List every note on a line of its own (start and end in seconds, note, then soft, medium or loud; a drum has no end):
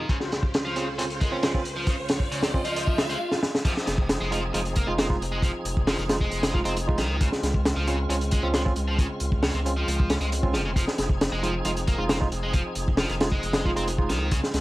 0.00 riser medium
0.09 3.18 C#2 medium
0.09 3.17 C#3 medium
0.09 0.17 C#3 medium
0.09 3.17 F4 medium
0.09 3.17 C5 medium
0.09 kick loud
0.09 closed hi-hat medium
0.20 snare soft
0.32 snare soft
0.32 closed hi-hat medium
0.43 kick loud
0.54 snare loud
0.54 closed hi-hat medium
0.65 0.75 F3 medium
0.76 0.87 C#3 loud
0.76 0.83 C4 medium
0.76 0.83 C#4 medium
0.76 0.83 F4 medium
0.76 closed hi-hat medium
0.98 1.03 C#3 loud
0.98 1.05 C4 medium
0.98 1.05 C#4 medium
0.98 1.05 F4 medium
0.98 closed hi-hat medium
1.10 closed hi-hat soft
1.20 1.31 G#3 medium
1.20 kick medium
1.20 closed hi-hat medium
1.32 1.51 C4 medium
1.32 1.36 C#4 medium
1.32 1.51 C#4 medium
1.32 1.51 F4 loud
1.43 1.50 G#3 medium
1.43 snare loud
1.43 closed hi-hat medium
1.54 1.61 C4 medium
1.54 1.61 C#4 medium
1.54 1.61 F4 medium
1.54 kick medium
1.65 closed hi-hat medium
1.76 1.86 F3 medium
1.87 1.95 C#3 medium
1.87 kick loud
1.87 closed hi-hat medium
2.09 snare medium
2.09 closed hi-hat medium
2.20 kick medium
2.32 2.42 C#3 medium
2.32 closed hi-hat medium
2.43 2.47 C3 medium
2.43 snare medium
2.43 closed hi-hat medium
2.54 2.61 C4 medium
2.54 2.61 C#4 medium
2.54 2.61 F4 loud
2.54 kick medium
2.65 2.97 F3 medium
2.65 closed hi-hat medium
2.76 closed hi-hat medium
2.76 swell medium
2.87 kick loud
2.98 3.03 C#3 medium
2.98 snare loud
2.98 closed hi-hat medium
3.09 3.17 G#3 loud
3.09 closed hi-hat soft
3.32 snare medium
3.43 snare medium
3.55 snare medium
3.65 3.73 F3 loud
3.65 7.17 F3 medium
3.65 7.17 C4 medium
3.65 7.17 D#4 medium
3.65 7.17 G#4 medium
3.65 kick loud
3.65 closed hi-hat medium
3.65 crash medium
3.77 snare soft
3.87 4.18 F1 loud
3.87 snare soft
3.87 closed hi-hat medium
3.98 kick loud
4.09 snare loud
4.09 closed hi-hat medium
4.21 4.51 F1 loud
4.21 4.31 G#3 medium
4.32 4.42 F3 loud
4.32 4.38 G#3 medium
4.32 4.38 D#4 medium
4.32 4.39 F4 medium
4.32 closed hi-hat medium
4.54 4.84 F1 medium
4.54 4.59 F3 loud
4.54 4.61 G#3 medium
4.54 4.61 D#4 medium
4.54 4.61 F4 medium
4.54 closed hi-hat medium
4.65 closed hi-hat soft
4.76 4.87 A#3 medium
4.76 kick medium
4.76 closed hi-hat medium
4.87 5.18 F1 loud
4.87 5.07 G#3 medium
4.87 5.07 D#4 medium
4.87 4.92 F4 medium
4.87 5.07 F4 loud
4.98 5.06 A#3 medium
4.98 snare loud
4.98 closed hi-hat medium
5.10 5.16 G#3 medium
5.10 5.16 D#4 medium
5.10 5.16 F4 medium
5.10 kick medium
5.21 5.51 F1 loud
5.21 closed hi-hat medium
5.32 5.42 G#3 medium
5.42 5.50 F3 medium
5.42 kick loud
5.42 closed hi-hat medium
5.65 5.95 F1 loud
5.65 closed hi-hat medium
5.77 kick medium
5.87 5.98 F3 medium
5.87 snare loud
5.87 open hi-hat medium
5.98 6.29 F1 loud
5.98 6.03 D#3 medium
5.98 closed hi-hat soft
6.09 6.16 G#3 medium
6.09 6.16 D#4 medium
6.09 6.16 F4 loud
6.09 snare medium
6.09 closed hi-hat medium
6.21 6.53 G#3 medium
6.21 kick medium
6.31 6.62 F1 medium
6.31 closed hi-hat medium
6.43 snare loud
6.43 closed hi-hat medium
6.54 6.58 F3 medium
6.54 6.61 G#3 medium
6.54 6.61 D#4 medium
6.54 6.61 F4 medium
6.54 kick medium
6.65 7.00 F1 loud
6.65 6.76 G#3 medium
6.65 6.73 C4 loud
6.65 6.76 D#4 medium
6.65 6.76 F4 medium
6.65 closed hi-hat medium
6.77 closed hi-hat medium
6.87 6.98 G#3 medium
6.87 6.98 D#4 medium
6.87 6.98 F4 loud
6.87 kick medium
6.98 7.29 C#2 loud
6.98 7.20 D#3 medium
6.98 snare medium
6.98 closed hi-hat medium
7.21 7.28 C#3 loud
7.21 10.73 C#3 medium
7.21 10.73 G#3 medium
7.21 14.61 C4 medium
7.21 10.73 F4 medium
7.21 kick loud
7.21 closed hi-hat medium
7.32 snare soft
7.43 7.73 C#2 loud
7.43 snare soft
7.43 closed hi-hat medium
7.54 kick loud
7.65 snare loud
7.65 closed hi-hat medium
7.76 8.07 C#2 loud
7.76 7.86 F3 medium
7.87 7.98 C#3 loud
7.87 7.94 C4 medium
7.87 7.94 C#4 medium
7.87 7.94 F4 medium
7.87 closed hi-hat medium
8.09 8.40 C#2 medium
8.09 8.14 C#3 loud
8.09 8.16 C4 medium
8.09 8.16 C#4 medium
8.09 8.16 F4 loud
8.09 closed hi-hat medium
8.21 closed hi-hat soft
8.31 8.42 G#3 medium
8.31 kick medium
8.31 closed hi-hat medium
8.43 8.73 C#2 loud
8.43 8.62 C4 medium
8.43 8.47 C#4 medium
8.43 8.63 C#4 medium
8.43 8.63 F4 loud
8.54 8.61 G#3 medium
8.54 snare loud
8.54 closed hi-hat medium
8.65 8.72 C4 medium
8.65 8.72 C#4 medium
8.65 8.72 F4 medium
8.65 kick loud
8.76 9.07 C#2 loud
8.76 closed hi-hat medium
8.88 8.97 F3 medium
8.99 9.06 C#3 medium
8.99 kick loud
8.99 closed hi-hat medium
9.20 9.51 C#2 loud
9.20 closed hi-hat medium
9.32 kick medium
9.43 9.54 C#3 medium
9.43 snare loud
9.43 open hi-hat medium
9.54 9.84 C#2 loud
9.54 9.59 C3 medium
9.54 closed hi-hat soft
9.65 9.72 C4 medium
9.65 9.72 C#4 medium
9.65 9.72 F4 loud
9.65 closed hi-hat medium
9.77 10.09 F3 medium
9.88 10.18 C#2 medium
9.88 closed hi-hat medium
10.00 kick loud
10.10 10.14 C#4 medium
10.10 snare loud
10.10 closed hi-hat medium
10.21 10.56 C#2 loud
10.21 10.28 G#3 loud
10.21 closed hi-hat soft
10.32 closed hi-hat medium
10.43 10.54 C4 medium
10.43 10.54 C#4 medium
10.43 10.54 F4 loud
10.43 kick medium
10.53 10.84 F1 loud
10.53 10.61 F3 medium
10.53 snare soft
10.53 closed hi-hat medium
10.65 10.70 C#3 medium
10.76 10.84 F3 loud
10.76 14.28 F3 medium
10.76 14.28 D#4 medium
10.76 14.29 G#4 medium
10.76 kick loud
10.76 closed hi-hat medium
10.88 snare medium
10.98 11.29 F1 loud
10.98 snare soft
10.98 closed hi-hat medium
11.09 kick medium
11.21 snare loud
11.21 closed hi-hat medium
11.32 11.62 F1 loud
11.32 11.42 G#3 medium
11.43 11.54 F3 loud
11.43 11.50 G#3 medium
11.43 11.50 D#4 medium
11.43 11.50 F4 medium
11.43 closed hi-hat medium
11.65 11.95 F1 medium
11.65 11.70 F3 loud
11.65 11.72 G#3 medium
11.65 11.72 D#4 medium
11.65 11.72 F4 medium
11.65 closed hi-hat medium
11.77 closed hi-hat soft
11.87 11.98 A#3 medium
11.87 kick medium
11.87 closed hi-hat medium
11.98 12.29 F1 loud
11.98 12.18 G#3 medium
11.98 12.18 D#4 medium
11.98 12.18 F4 loud
11.98 12.03 F4 medium
12.09 12.17 A#3 medium
12.09 snare loud
12.09 closed hi-hat medium
12.20 12.27 G#3 medium
12.20 12.27 D#4 medium
12.20 12.27 F4 medium
12.20 kick loud
12.32 12.62 F1 loud
12.32 closed hi-hat medium
12.43 12.53 G#3 medium
12.53 12.62 F3 medium
12.53 kick loud
12.53 closed hi-hat medium
12.75 13.06 F1 loud
12.75 closed hi-hat medium
12.88 kick medium
12.97 13.09 F3 medium
12.97 snare loud
12.97 open hi-hat medium
13.09 13.40 F1 loud
13.09 13.14 D#3 medium
13.09 closed hi-hat soft
13.20 13.27 G#3 medium
13.20 13.27 D#4 medium
13.20 13.27 F4 loud
13.20 snare loud
13.20 closed hi-hat medium
13.32 13.64 G#3 medium
13.32 kick medium
13.43 13.73 F1 medium
13.43 closed hi-hat medium
13.53 snare loud
13.53 closed hi-hat medium
13.65 13.70 F3 medium
13.65 13.72 G#3 medium
13.65 13.72 D#4 medium
13.65 13.72 F4 medium
13.65 kick medium
13.76 14.11 F1 loud
13.76 13.87 G#3 medium
13.76 13.84 C4 loud
13.76 13.87 D#4 medium
13.76 13.87 F4 medium
13.76 closed hi-hat medium
13.88 closed hi-hat medium
13.98 14.09 G#3 medium
13.98 14.09 D#4 medium
13.98 14.09 F4 loud
13.98 kick medium
14.09 14.40 C#2 loud
14.09 14.31 D#3 medium
14.09 snare soft
14.09 closed hi-hat medium
14.31 14.39 C#3 loud
14.31 14.61 C#3 medium
14.31 14.61 G#3 medium
14.31 14.61 F4 medium
14.31 kick loud
14.31 closed hi-hat medium
14.43 snare medium
14.54 14.61 C#2 loud
14.54 snare medium
14.54 closed hi-hat medium